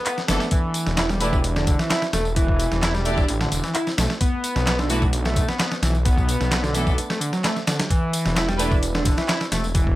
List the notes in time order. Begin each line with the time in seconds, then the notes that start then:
0.05 B3, clap, closed hi-hat, tambourine
0.18 snare, tambourine
0.28 F#1 E3 A3 B3 D4 A4, snare, closed hi-hat, tambourine
0.40 snare, tambourine
0.51 E3, kick, closed hi-hat, tambourine
0.74 closed hi-hat, tambourine
0.86 E1, snare, tambourine
0.97 E4, snare, clap, closed hi-hat, tambourine
1.09 G3, snare, tambourine
1.21 A3 D4 E4 G4 B4, closed hi-hat, tambourine
1.33 kick, tambourine
1.44 closed hi-hat, tambourine
1.56 D3, snare, tambourine
1.67 kick, closed hi-hat, tambourine
1.79 E3, snare, tambourine
1.90 E4, snare, clap, closed hi-hat, tambourine
2.02 snare, tambourine
2.13 E1 A3, snare, closed hi-hat, tambourine
2.25 tambourine
2.36 E3, kick, closed hi-hat, tambourine
2.48 kick
2.59 closed hi-hat, tambourine
2.71 E1, snare, tambourine
2.82 E4, snare, clap, closed hi-hat, tambourine
2.94 G3, snare, tambourine
3.05 A3 D4 E4 G4 D5, closed hi-hat, tambourine
3.17 kick, tambourine
3.28 A1, closed hi-hat, tambourine
3.41 D3, snare, tambourine
3.52 E1, closed hi-hat, tambourine
3.63 E3, snare, tambourine
3.75 E4, clap, closed hi-hat, tambourine
3.87 snare, tambourine
3.98 B1 A3, snare, closed hi-hat, tambourine
4.10 snare, tambourine
4.21 B3, kick, closed hi-hat, tambourine
4.44 closed hi-hat, tambourine
4.56 B1, snare, tambourine
4.67 B3, snare, clap, closed hi-hat, tambourine
4.79 D3, snare, tambourine
4.89 E3 A3 B3 D4 F#4, closed hi-hat, tambourine
5.02 kick, tambourine
5.13 closed hi-hat, tambourine
5.25 A3, snare, tambourine
5.36 kick, closed hi-hat, tambourine
5.48 B3, snare, tambourine
5.59 B3, snare, clap, closed hi-hat, tambourine
5.72 snare, tambourine
5.82 B1 E3, snare, closed hi-hat, tambourine
5.95 tambourine
6.05 B3, kick, closed hi-hat, tambourine
6.18 kick, tambourine
6.29 closed hi-hat, tambourine
6.41 B1, snare, tambourine
6.51 B3, snare, clap, closed hi-hat, tambourine
6.63 D3, snare, tambourine
6.74 E3 A3 B3 D4 A4, closed hi-hat, tambourine
6.87 kick, tambourine
6.98 closed hi-hat, tambourine
7.10 A3, snare, tambourine
7.20 D3, closed hi-hat, tambourine
7.33 F#3, snare, tambourine
7.44 A3, snare, clap, closed hi-hat, tambourine
7.56 snare, tambourine
7.67 D3, snare, closed hi-hat, tambourine
7.79 snare, closed hi-hat, tambourine
7.90 E3, kick, closed hi-hat, tambourine
8.13 closed hi-hat, ride, tambourine
8.25 E1, snare, tambourine
8.36 E4, snare, clap, closed hi-hat, tambourine
8.48 G3, snare, tambourine
8.59 A3 D4 E4 G4 B4, closed hi-hat, ride, tambourine
8.72 kick, tambourine
8.83 closed hi-hat, tambourine
8.95 D3, snare, tambourine
9.05 kick, closed hi-hat, ride, tambourine
9.18 E3, snare, tambourine
9.28 E4, snare, clap, closed hi-hat, tambourine
9.40 snare, tambourine
9.52 E1 A3, snare, closed hi-hat, ride, tambourine
9.64 tambourine
9.75 E3, kick, closed hi-hat, tambourine
9.87 kick